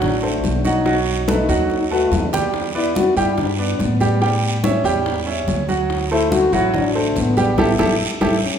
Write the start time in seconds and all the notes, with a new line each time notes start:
Already playing: A1 F#3 F#4 F#5
0.02 D4, high bongo, high conga, low conga, long guiro
0.22 A3 A4 C5, high bongo, high conga
0.43 B1, high bongo, low bongo, high conga, short guiro
0.65 F#3 D#4 F#4 F#5, high conga, short guiro
0.86 F#3 F#4 F#5, high bongo, high conga, long guiro
1.07 high bongo, high conga
1.28 A3 D#4 A4 B4, high bongo, high conga, short guiro
1.49 D#2 F#3 F#4 F#5, high bongo, high conga, short guiro
1.70 high bongo, high conga, long guiro
1.91 A3 F#4 A4 B4, high conga
2.11 E2, low bongo, high conga, short guiro
2.33 G3 G4 G5, low bongo, low conga, short guiro
2.54 high bongo, high conga, long guiro
2.75 B3 E4 B4 D5, high bongo, high conga
2.95 F#4, high bongo, high conga, short guiro
3.16 G2 G3 E4 G4 G5, high bongo, short guiro
3.38 D4, high bongo, high conga, low conga, long guiro
3.58 B3 B4 D5, high bongo, high conga
3.79 A2 B3, high bongo, low bongo, high conga, short guiro
4.00 G3 G4 G5, high conga, short guiro
4.21 G3 G4 G5, high bongo, high conga, long guiro
4.43 high bongo, high conga
4.63 C#4 C#5 E5, high bongo, high conga, short guiro
4.84 E2 G3 G4 G5, high bongo, high conga, short guiro
5.06 high bongo, high conga, long guiro
5.26 C#4 C#5 E5, high bongo, high conga
5.47 D2, high bongo, low bongo, high conga, short guiro
5.68 F#3 F#4 F#5, high conga, short guiro
5.90 high bongo, high conga, long guiro
6.11 A3 E4 A4 C5, high bongo, high conga
6.32 F#4, high bongo, high conga, short guiro
6.52 A1 F#3 E4 F#4 F#5, high bongo, short guiro
6.74 D4, high bongo, high conga, low conga, long guiro
6.95 A3 A4 C5, high bongo, high conga
7.15 A1 B3, high bongo, low bongo, high conga, short guiro
7.37 G3 G4 G5, high conga, short guiro
7.57 A1 E4 G4 A4, high bongo, high conga, long guiro
7.79 A1 E4 G4 A4, high bongo, high conga, long guiro
8.21 A1 E4 G4 A4, high bongo, high conga, long guiro
8.43 C#4